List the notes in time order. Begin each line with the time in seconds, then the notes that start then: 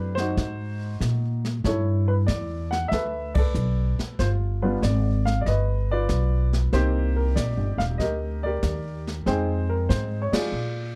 Already playing: F#2 A3 C4 D4 E4 G4 B4 D5
0.15 C5, snare
0.20 D#4 F#4
0.37 G#2, brush sweep, kick, snare
1.00 A#2, kick, snare, hi-hat pedal
1.45 snare
1.64 G2 E4 A4 C#5, brush sweep, kick, snare
2.08 B4
2.27 E2 D5, kick, snare, hi-hat pedal
2.71 F#5, snare
2.88 D2 E5, brush sweep, kick, snare
2.93 A4 B4
3.34 A4 B4 D5, kick, crash
3.55 B1, hi-hat pedal
3.99 muted upright bass stroke, snare
4.19 G1 F4 C5, brush sweep, kick, snare
4.62 G3 B3 D4 F4 B4
4.82 G#1 D5, kick, snare, hi-hat pedal
5.25 F5, snare
5.41 D5
5.46 G1 B4 D#5, brush sweep, kick, snare
5.91 F4 B4 D5
6.09 B1, kick, snare, hi-hat pedal
6.53 snare
6.73 C2 A#3 C4 D#4 G4 C5, brush sweep, kick, snare
7.16 A#4
7.36 A#1 D5, kick, snare, hi-hat pedal
7.57 G1
7.78 D#1 F5, snare
7.98 D2 G4 D#5, brush sweep, kick, snare
8.02 A#4
8.43 G4 A#4 D5
8.63 D#2, kick, snare, hi-hat pedal
9.07 snare
9.26 F2 G#3 C4 D#4 G#4 C5 G5, brush sweep, kick, snare
9.69 A#4
9.89 G#2 C5, kick, snare, hi-hat pedal
10.22 C#5
10.32 F4 G#4 D5, muted upright bass stroke, snare, ride
10.52 A#2, brush sweep